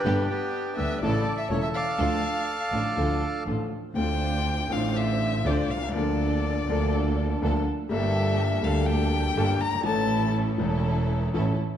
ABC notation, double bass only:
X:1
M:4/4
L:1/8
Q:1/4=122
K:Dm
V:1 name="Double bass" clef=bass
G,,, z2 D,, A,,, z E,,, z | D,, z2 A,,, D,, z A,,, z | D,,3 A,,,3 D,, C,, | D,,3 D,,3 D,, z |
G,,,3 D,,3 G,,, G,,, | A,,,3 E,,,3 A,,, z |]